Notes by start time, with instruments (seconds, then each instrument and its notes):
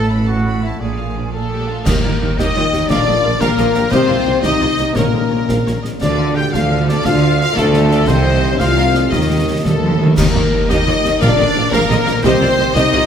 Already playing: double bass section A1, cello section A2, harp A2 E4 E5, viola section B3, violin section A4 A5
0.10 french horn section E3 B3, viola section A3, violin section E4 B5, harp A4
0.27 viola section B3, trumpet F#4, violin section A4 A5, harp E5, flute F#5
0.44 viola section A3, violin section E4 B5, harp A4
0.62 french horn section E3 B3, viola section B3, trumpet E4, harp E4, violin section A4 A5, flute E5
0.80 double bass section A#1, harp A#2, cello section A#2, viola section G#3, violin section D4 D5, trumpet G#4, flute G#5
0.98 viola section A#3, harp D4, violin section F4 F5
1.15 french horn section F3 D4, viola section G#3, violin section D4 D5, harp F4
1.32 french horn section A3, viola section A#3, violin section G#4 A4 F5, trumpet A4, flute A4, clarinet A4, harp D5
1.49 viola section G#3, harp F4, violin section G4 D5
1.68 french horn section F3 D4, viola section A#3, harp D4, violin section F4 F5
1.85 double bass section D#2, tuba D#2, timpani D#3, harp D#3, cello section D#3, french horn section A#3, violin section G4 A#4, viola section G4 D#5, trumpet A#4, flute A#4, clarinet A#4, concert bass drum, snare, crash
1.96 harp A#3
2.03 double bass section D#2, tuba D#2, cello section D#3, harp D#4, viola section F4 D5, violin section A#4
2.13 harp G4
2.21 tuba D#2, double bass section D#2, cello section D#3, violin section G4, viola section G4 D#5, harp A#4
2.37 tuba D#2, double bass section D#2, cello section D#3, french horn section D#4, viola section G4 D#5, trumpet D#5, clarinet D#5, violin section D#5, flute D#5, harp G5, concert bass drum, snare
2.47 harp A#5
2.56 double bass section D#2, tuba D#2, cello section D#3, viola section F4 D5, harp G5
2.64 harp D#5
2.73 tuba D#2, double bass section D#2, cello section D#3, viola section G4 D#5, harp A#4, snare
2.82 harp G4
2.89 tuba A#1, double bass section A#1, cello section A#2, timpani A#2, harp A#2, french horn section D4, violin section F4 D5, viola section A#4 F5, trumpet D5, flute D5, clarinet D5, concert bass drum, snare
2.99 harp F3
3.06 tuba A#1, double bass section A#1, cello section A#2, harp F4, viola section A4 D#5
3.16 harp F3
3.23 tuba A#1, double bass section A#1, cello section A#2, viola section A#4 F5, harp A#4
3.33 harp F5
3.38 tuba A#1, double bass section A#1, cello section A#2, french horn section A#3, violin section G4 A#4, clarinet A#4, flute A#4, harp A#4, trumpet A#4, viola section A#4 F5, concert bass drum, snare
3.57 tuba A#1, double bass section A#1, cello section A#2, violin section F4, viola section A4 D#5, harp F5, snare
3.66 harp A#4
3.74 tuba A#1, double bass section A#1, cello section A#2, harp F4, violin section G4, viola section A#4 F5, snare
3.84 harp F3
3.90 tuba C2, double bass section C2, harp C3, cello section C3, french horn section C4, violin section F4 C5, viola section G4 D#5, flute C5, trumpet C5, clarinet C5, concert bass drum, snare
4.01 harp G3
4.08 tuba C2, double bass section C2, cello section C3, harp C4, viola section F4 D5
4.17 harp D#4
4.25 tuba C2, double bass section C2, cello section C3, viola section G4 D#5, harp G4
4.42 tuba C2, double bass section C2, cello section C3, french horn section D#4, violin section D#4 D#5, viola section G4 D#5, flute D#5, clarinet D#5, trumpet D#5, concert bass drum, snare
4.51 harp G5
4.60 tuba C2, double bass section C2, cello section C3, viola section F4 D5, harp D#5
4.68 harp C5
4.77 tuba C2, double bass section C2, cello section C3, harp G4, viola section G4 D#5, snare
4.87 harp D#4
4.93 tuba A#1, double bass section A#1, harp A#2, timpani A#2, cello section A#2, french horn section A#3, violin section C#4 A#4, viola section A#4 C#5, clarinet A#4, trumpet A#4, flute A#4, concert bass drum, snare
5.04 harp F3
5.13 tuba A#1, double bass section A#1, cello section A#2, harp C#4, viola section A4 C5
5.22 harp F4
5.30 double bass section A#1, tuba A#1, cello section A#2, viola section A#4 C#5
5.40 harp C#5
5.48 double bass section A#1, tuba A#1, cello section A#2, harp F5, viola section F5, concert bass drum, snare
5.66 double bass section A#1, tuba A#1, cello section A#2, viola section C#5, harp F5, snare
5.76 harp C#5
5.83 double bass section A#1, tuba A#1, cello section A#2, harp A#4, viola section D#5, snare
5.94 harp F4
6.01 tuba D2, double bass section D2, harp D3, cello section D3, french horn section D4, violin section F4 D5, viola section A4 F5, clarinet D5, trumpet D5, flute D5, concert bass drum, snare, crash
6.19 harp D4, viola section A4 F5
6.29 harp F4
6.35 french horn section G4, viola section A4 F5, harp A4, clarinet G5, trumpet G5, flute G5, violin section G5
6.46 harp D5
6.53 tuba D2, double bass section D2, cello section D3, french horn section F4, viola section A4 F5, violin section A4 F5, clarinet F5, flute F5, trumpet F5, concert bass drum, snare
6.63 harp A5
6.71 viola section A4 F5
6.81 harp D5
6.88 french horn section D4, viola section A4 F5, harp A4, flute D5, clarinet D5, trumpet D5, violin section D5, snare
6.98 harp F4
7.05 tuba D2, double bass section D2, cello section D3, harp D3, french horn section F4, viola section A4 F5, flute F5, violin section F5, clarinet F5, trumpet F5, concert bass drum, snare
7.16 harp A3
7.22 harp D4, viola section A4 F5
7.38 french horn section F4, viola section A4 F5, harp A4, clarinet F5, trumpet F5, flute F5, violin section F5
7.48 harp D5
7.55 tuba D2, double bass section D2, cello section D3, french horn section A3, clarinet A4, flute A4, trumpet A4, viola section A4 F5, violin section A4 D5, harp F5, concert bass drum, snare
7.66 harp A5
7.74 viola section A4 F5, violin section C5, snare
7.91 viola section A4 F5, violin section D5, snare
7.99 harp F4
8.08 tuba C2, double bass section C2, cello section C3, harp C3, french horn section C4, trumpet C5, flute C5, violin section C5 D#5, viola section C5 D#5, clarinet C5, concert bass drum, snare
8.17 harp G3
8.25 viola section C5 D#5
8.34 harp G4
8.43 viola section C5 D#5
8.59 double bass section C2, tuba C2, cello section C3, french horn section F4, violin section C5 F5, viola section C5 D#5, flute F5, clarinet F5, trumpet F5, harp G5, concert bass drum, snare
8.77 violin section A#4, viola section C5 D#5
8.85 harp D#5
8.95 violin section A4, viola section C5 D#5, snare
9.03 harp G4
9.11 tuba D#2, double bass section D#2, harp D#3, cello section D#3, timpani D#3, french horn section D#4, violin section G4 D#5, viola section G4 D#5, trumpet D#5, flute D#5, clarinet D#5, concert bass drum, snare
9.20 timpani D#3, harp A#3
9.29 timpani D#3, harp D#4, viola section G4 D#5
9.36 timpani D#3, harp G4
9.44 timpani D#3, viola section G4 D#5
9.51 timpani D#3, harp D#5
9.59 timpani D#3
9.64 tuba D#2, double bass section D#2, timpani D#3, cello section G3, french horn section A3, viola section G4 D#5, flute A4, violin section A4, clarinet A4, concert bass drum, snare
9.75 timpani D#3
9.82 timpani D#3, cello section F3, viola section G4 D#5
9.90 timpani D#3
9.99 timpani D#3, cello section D#3, viola section G4 D#5, harp A#4
10.06 timpani D#3, harp G4
10.16 tuba D#2, double bass section D#2, cello section D#3, harp D#3, timpani D#3, french horn section A#3, viola section G4 D#5, violin section A#4, clarinet A#4, flute A#4, concert bass drum, snare, crash
10.27 harp A#3
10.34 double bass section D#2, tuba D#2, cello section D#3, harp D#4, viola section F4 D5
10.44 harp G4
10.52 double bass section D#2, tuba D#2, cello section D#3, viola section G4 D#5
10.68 double bass section D#2, tuba D#2, cello section D#3, french horn section D#4, viola section G4 D#5, violin section D#5, flute D#5, clarinet D#5, harp G5, concert bass drum, snare
10.79 harp A#5
10.87 double bass section D#2, tuba D#2, cello section D#3, viola section F4 D5, harp G5
10.95 harp D#5
11.03 double bass section D#2, tuba D#2, cello section D#3, viola section G4 D#5, harp A#4, snare
11.13 harp G4
11.20 double bass section A#1, tuba A#1, harp A#2, cello section A#2, timpani A#2, french horn section D4, viola section A#4 F5, flute D5, clarinet D5, violin section D5, concert bass drum, snare
11.30 harp F3
11.39 double bass section A#1, tuba A#1, cello section A#2, viola section A4 D#5
11.48 harp F3
11.55 tuba A#1, double bass section A#1, cello section A#2, viola section A#4 F5, harp A#4
11.65 harp F5
11.72 tuba A#1, double bass section A#1, cello section A#2, french horn section A#3, flute A#4, harp A#4, violin section A#4, viola section A#4 F5, clarinet A#4, concert bass drum, snare
11.89 tuba A#1, double bass section A#1, cello section A#2, viola section A4 D#5, harp F5, snare
11.99 harp A#4
12.05 tuba A#1, double bass section A#1, cello section A#2, harp F4, viola section A#4 F5, snare
12.15 harp F3
12.22 double bass section C2, tuba C2, cello section C3, harp C3, french horn section C4, viola section G4 D#5, clarinet C5, violin section C5, flute C5, concert bass drum, snare, crash
12.32 harp G3
12.40 double bass section C2, tuba C2, cello section C3, viola section F4 D5
12.50 harp D#4
12.58 tuba C2, double bass section C2, cello section C3, harp G4, viola section G4 D#5
12.67 harp C5
12.74 tuba C2, double bass section C2, cello section C3, french horn section D#4, viola section G4 D#5, clarinet D#5, flute D#5, violin section D#5, concert bass drum, snare
12.84 harp G5
12.92 double bass section C2, tuba C2, cello section C3, viola section F4 D5, harp D#5